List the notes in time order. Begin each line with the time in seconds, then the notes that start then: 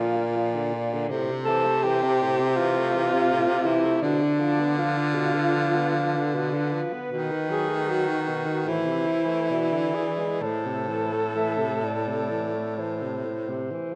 Already playing: A#2 F3 F4 D5
0.16 A#3
0.36 F3
0.55 D3
0.73 A#2
0.93 D3
1.09 A2 C3 C5
1.31 C3
1.45 E3 A4
1.66 A3
1.83 E3 G4
2.04 C3
2.22 A2
2.40 C3
2.56 E3 F4
2.78 A3
2.95 E3
3.14 C3
3.32 A2
3.49 C3
3.65 E3 E4
3.84 A3
4.02 B2 D3 D4
4.22 D3
4.40 F3
4.60 B3
4.77 F3 F4 B4
4.97 D3
5.14 B2
5.35 D3
5.54 F3
5.76 B3
5.94 F3
6.15 D3
6.34 B2
6.54 D3
6.73 F3
6.93 B3
7.12 B2 D#3
7.31 D#3
7.50 F#3 G#4
7.69 A3
7.88 F#3 F#4
8.09 D#3
8.29 B2
8.46 D#3
8.66 A2 E3 E4 C5
8.86 C3
9.06 E3
9.27 A3
9.51 B2 D5
9.73 D3
9.94 E3 G#4
10.18 G#3
10.41 A2 A4 C5
10.66 C3
10.89 E3
11.12 A3
11.35 E3 E5
11.58 C3
11.83 A2 D5
12.07 C3
12.30 E3
12.54 A3
12.78 E3 C5
13.02 C3
13.25 A2
13.49 C3
13.71 E3